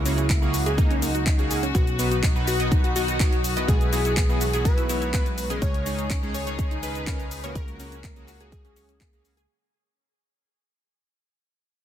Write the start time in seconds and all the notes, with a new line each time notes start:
Already playing: C#2 C#3 F#3 G#3 A#3 E4 F#4
0.05 C#3 A#3 C#4 F#4 G#4 C#5, open hi-hat, shaker
0.18 C#4 C#5, closed hi-hat, shaker
0.30 A#3 A#4, kick, clap, closed hi-hat, shaker
0.42 C#3 A#3 C#4 F#4 G#4 A#4, shaker
0.54 F#4 F#5, open hi-hat, shaker
0.66 C#3 A#3 C#4 F#4 G#4 G#5, closed hi-hat, shaker
0.78 A#3 D#4 A#4, kick, closed hi-hat, shaker
0.90 C#4 C#5, closed hi-hat, shaker
1.02 A#3 A#4, open hi-hat, shaker
1.15 F#4 F#5, closed hi-hat, shaker
1.26 C#5 C#6, kick, clap, closed hi-hat, shaker
1.39 C#3 A#3 C#4 F#4 G#4 G#5, closed hi-hat, shaker
1.51 G#4 G#5, open hi-hat, shaker
1.63 C#4 C#5, closed hi-hat, shaker
1.75 B1 B2 D#3 B3 D#4 F#4 B4, kick, closed hi-hat, shaker
1.87 closed hi-hat, shaker
1.99 B2 B3 D#4 F#4 B4 F#5, open hi-hat, shaker
2.11 F#4 F#5, closed hi-hat, shaker
2.23 D#4 D#5, kick, clap, closed hi-hat, shaker
2.36 B2 B3 D#4 F#4 B4 D#5, shaker
2.47 F#4 B4 B5, open hi-hat, shaker
2.60 B2 B3 D#4 F#4 B4 D#5 D#6, closed hi-hat, shaker
2.72 D#4 D#5, kick, closed hi-hat, shaker
2.84 F#4 F#5, closed hi-hat, shaker
2.96 B2 B3 D#4 F#4 D#5 F#5, open hi-hat, shaker
3.08 F#4 F#5, closed hi-hat, shaker
3.20 B2 B3 D#4 F#4 C#5 D#5, kick, clap, closed hi-hat, shaker
3.33 closed hi-hat, shaker
3.44 open hi-hat, shaker
3.57 B2 B3 E4 F#4 B4 D#5 D#6, closed hi-hat, shaker
3.68 B1 E3 F#3 G#3 B3 G#4, kick, closed hi-hat, shaker
3.81 closed hi-hat, shaker
3.93 B2 B3 E4 F#4 G#4 E5, open hi-hat, shaker
4.05 E4 E5, closed hi-hat, shaker
4.17 B3 B4, kick, clap, closed hi-hat, shaker
4.29 B2 B3 E4 F#4 G#4 B4, shaker
4.41 F#4 F#5, open hi-hat, shaker
4.53 B2 B3 E4 F#4 G#4 G#5, closed hi-hat, shaker
4.65 B3 B4, kick, closed hi-hat, shaker
4.78 E4 E5, closed hi-hat, shaker
4.89 B2 B3 E4 F#4 C#5 E5, open hi-hat, shaker
5.02 E4 E5, closed hi-hat, shaker
5.13 B2 B3 E4 F#4 B4, kick, clap, closed hi-hat, shaker
5.26 closed hi-hat, shaker
5.38 open hi-hat, shaker
5.50 C#3 G#3 C#4 D#4 G#4 A#4 G#5, closed hi-hat, shaker
5.62 C#2 C#3 D#3 G#3 D#4 G#4 C#5, kick, closed hi-hat, shaker
5.74 closed hi-hat, shaker
5.86 C#3 G#3 C#4 D#4 G#4 D#5, open hi-hat, shaker
5.99 D#4 D#5, closed hi-hat, shaker
6.10 C#4 C#5, kick, clap, closed hi-hat, shaker
6.23 C#3 G#3 C#4 D#4 G#4 C#5, shaker
6.34 G#4 C#5 G#5, open hi-hat, shaker
6.47 C#3 G#3 C#4 D#4 G#4 C#5 C#6, closed hi-hat, shaker
6.59 C#4 C#5, kick, closed hi-hat, shaker
6.71 D#4 D#5, closed hi-hat, shaker
6.83 C#3 G#3 C#4 D#4 B4 D#5, open hi-hat, shaker
6.95 D#4 D#5, closed hi-hat, shaker
7.07 C#3 G#3 C#4 D#4 A#4 C#5, kick, clap, closed hi-hat, shaker
7.20 closed hi-hat, shaker
7.31 open hi-hat, shaker
7.44 C#3 A#3 C#4 F#4 A#4 C#5 C#6, closed hi-hat, shaker
7.55 C#2 F#3 G#3 A#3 F#4 G#4 A#4, kick, closed hi-hat, shaker
7.68 closed hi-hat, shaker
7.80 C#3 A#3 C#4 F#4 G#4 C#5, open hi-hat, shaker
7.92 C#4 C#5, closed hi-hat, shaker
8.04 A#3 A#4, kick, clap, closed hi-hat, shaker
8.16 C#3 A#3 C#4 F#4 G#4 A#4, closed hi-hat, shaker
8.28 F#4 F#5, clap, open hi-hat, shaker
8.40 C#3 A#3 C#4 F#4 G#4 G#5, closed hi-hat, shaker
8.52 A#3 G#4 A#4, kick, closed hi-hat, shaker
8.65 C#4 C#5, closed hi-hat, shaker
8.76 C#4 C#5, open hi-hat, shaker
8.89 C#4 C#5, closed hi-hat, shaker
9.01 A#3 A#4, kick, clap, closed hi-hat
9.13 C#3 A#3 C#4 F#4 G#4, closed hi-hat, shaker
9.25 open hi-hat, shaker
9.37 G#4 G#5, closed hi-hat, shaker